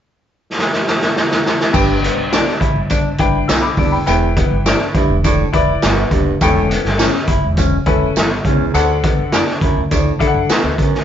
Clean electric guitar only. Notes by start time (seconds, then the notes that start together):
2.02 B3
2.32 D4
2.61 E4
2.90 D4
3.20 E4
3.78 D4
4.37 B3
4.66 D4
4.95 E4
5.24 D4
5.53 E4
5.83 B3
6.69 B3
6.98 C#4
7.28 E4
7.58 C#4
7.87 E4
8.46 C#4
9.04 B3
9.33 D4
9.62 E4
9.91 D4
10.20 E4
10.50 B3